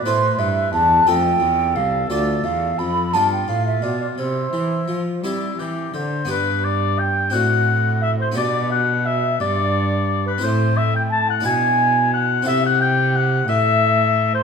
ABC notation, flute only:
X:1
M:6/8
L:1/16
Q:3/8=58
K:C
V:1 name="Flute"
c2 e2 a2 g4 f2 | d2 f2 b2 a g f e d d | c6 z6 | [K:G] B2 d2 g2 f4 e c |
d2 f2 e2 d4- d B | c2 e g a f ^g4 f2 | e f g2 f2 e4- e c |]